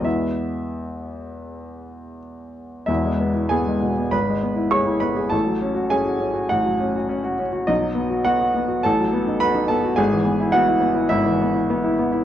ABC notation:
X:1
M:4/4
L:1/16
Q:1/4=101
K:E
V:1 name="Grand piano"
e12 z4 | [Ee]4 [Gg]4 [Bb]4 [cc']2 [Bb]2 | [Aa]4 [Gg]4 [Ff]6 z2 | [Dd]4 [Ff]4 [Aa]4 [Bb]2 [Aa]2 |
[Gg]4 [Ff]4 [Ee]6 z2 |]
V:2 name="Grand piano"
[E,,G,B,E]16 | [E,,,E,,] G, B, E B, G, B,, B, G,,, G, B, E G E B, G | A,,, F, C F C F C F A,,, F, C F C F C F | B,,, F, B, F B, F B, F A,,, F, B, D F D B, F |
G,,, E, B, E B, E B, E G,,, E, B, E B, E B, E |]